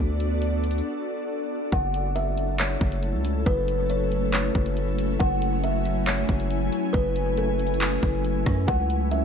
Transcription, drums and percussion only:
0.20 closed hi-hat medium
0.42 closed hi-hat medium
0.64 closed hi-hat medium
0.71 closed hi-hat medium
0.78 closed hi-hat soft
1.72 kick loud
1.72 closed hi-hat medium
1.94 closed hi-hat medium
2.16 closed hi-hat medium
2.38 closed hi-hat medium
2.59 clap loud
2.59 closed hi-hat medium
2.81 kick medium
2.81 closed hi-hat medium
2.92 closed hi-hat medium
3.03 closed hi-hat medium
3.25 closed hi-hat medium
3.46 kick loud
3.46 closed hi-hat medium
3.68 closed hi-hat medium
3.90 closed hi-hat medium
4.12 closed hi-hat medium
4.33 clap loud
4.33 closed hi-hat medium
4.55 kick medium
4.55 closed hi-hat medium
4.66 closed hi-hat medium
4.77 closed hi-hat medium
4.98 closed hi-hat medium
5.20 kick loud
5.20 closed hi-hat medium
5.42 closed hi-hat medium
5.64 closed hi-hat medium
5.85 closed hi-hat medium
6.07 clap loud
6.07 closed hi-hat medium
6.29 kick medium
6.29 closed hi-hat medium
6.40 closed hi-hat medium
6.50 closed hi-hat medium
6.72 closed hi-hat medium
6.94 kick loud
6.94 closed hi-hat medium
7.16 closed hi-hat medium
7.37 closed hi-hat medium
7.59 closed hi-hat medium
7.67 closed hi-hat medium
7.74 closed hi-hat soft
7.81 clap loud
7.81 closed hi-hat medium
8.03 kick medium
8.03 closed hi-hat medium
8.24 closed hi-hat medium
8.46 kick loud
8.46 cross-stick loud
8.46 closed hi-hat medium
8.68 kick loud
8.68 closed hi-hat medium
8.90 closed hi-hat medium
9.11 closed hi-hat medium

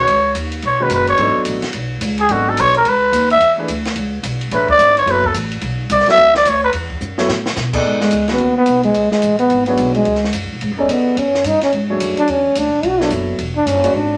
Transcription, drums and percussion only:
0.07 ride medium
0.35 hi-hat pedal medium
0.35 ride medium
0.52 ride soft
0.62 ride medium
0.90 hi-hat pedal medium
0.90 ride medium
1.07 ride soft
1.17 ride medium
1.45 hi-hat pedal medium
1.45 ride medium
1.62 snare soft
1.62 ride medium
1.73 ride medium
2.01 hi-hat pedal medium
2.01 ride medium
2.18 ride soft
2.29 ride medium
2.57 hi-hat pedal medium
2.57 ride medium
2.74 ride soft
2.85 ride medium
3.13 hi-hat pedal medium
3.13 ride medium
3.30 ride soft
3.41 ride medium
3.68 hi-hat pedal medium
3.68 ride medium
3.85 snare medium
3.85 ride soft
3.96 ride medium
4.23 hi-hat pedal medium
4.23 ride medium
4.41 ride soft
4.51 ride medium
4.68 kick medium
4.79 hi-hat pedal medium
4.79 ride medium
4.97 ride soft
5.07 ride medium
5.24 kick medium
5.34 hi-hat pedal medium
5.34 ride medium
5.52 ride soft
5.61 ride medium
5.90 hi-hat pedal medium
5.90 ride medium
6.00 snare soft
6.06 snare soft
6.06 ride soft
6.17 ride medium
6.35 snare medium
6.45 hi-hat pedal medium
6.45 ride medium
6.73 ride medium
6.90 kick medium
7.01 hi-hat pedal medium
7.18 snare medium
7.29 snare medium
7.46 snare medium
7.56 snare medium
7.56 hi-hat pedal medium
7.73 kick medium
7.73 crash medium
8.01 snare medium
8.11 hi-hat pedal medium
8.11 ride medium
8.28 snare soft
8.28 ride soft
8.38 ride medium
8.66 hi-hat pedal medium
8.66 ride medium
8.83 ride soft
8.94 ride medium
9.12 snare soft
9.22 hi-hat pedal medium
9.22 ride medium
9.39 ride soft
9.50 ride medium
9.66 ride soft
9.77 hi-hat pedal medium
9.77 ride medium
9.94 ride soft
10.05 ride medium
10.15 snare soft
10.24 snare soft
10.33 hi-hat pedal medium
10.33 ride medium
10.61 ride medium
10.89 hi-hat pedal medium
10.89 ride medium
11.17 ride medium
11.34 snare soft
11.44 hi-hat pedal medium
11.44 ride medium
11.61 snare soft
11.61 ride medium
11.72 ride medium
12.00 hi-hat pedal medium
12.00 ride medium
12.17 ride soft
12.28 ride medium
12.55 hi-hat pedal medium
12.55 ride medium
12.83 ride medium
13.01 snare soft
13.10 hi-hat pedal medium
13.10 ride medium
13.38 ride medium
13.67 hi-hat pedal medium
13.67 ride medium
13.84 ride medium

